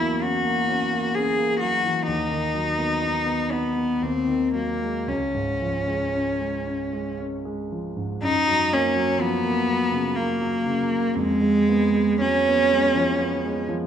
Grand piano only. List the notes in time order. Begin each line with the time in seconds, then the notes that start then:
Already playing: E2 E3 F#3
0.00 A#3
0.21 C#4
0.44 A#3
0.69 C#4
0.91 A#3
1.16 C#4
1.38 A#3
1.61 F#3
1.85 E3
2.07 D#2
2.31 D#3
2.54 F#3
2.78 B3
3.02 D#4
3.26 B3
3.51 D#4
3.77 B3
4.02 D#2
4.27 D#3
4.54 F#3
4.82 G#3
5.07 C#2
5.34 G#2
5.61 F3
5.87 G#3
6.13 C#4
6.40 G#3
6.66 C#4
6.93 G#3
7.19 C#4
7.45 G#3
7.72 F3
7.97 G#2
8.22 F#2
8.47 F#3
8.71 A#3
8.96 F#3
9.19 F3
9.43 A#3
9.68 F#3
9.92 C#3
10.17 A#3
10.41 F#3
10.66 C#3
10.91 A#3
11.15 F2
11.41 G#3
11.69 B3
11.95 G#3
12.22 F#3
12.48 B3
12.72 G#3
12.96 F3
13.21 B3
13.45 G#3
13.69 F3